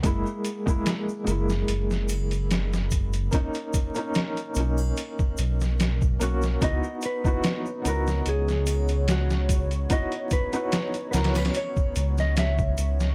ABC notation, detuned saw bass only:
X:1
M:4/4
L:1/8
Q:"Swing 16ths" 1/4=73
K:C#dor
V:1 name="Detuned saw bass" clef=bass
F,,, z2 F,,, F,,,4 | z3 B,,, z B,,,2 B,,, | C,, z2 C,, C,,4 | z3 C,, z C,,2 C,, |]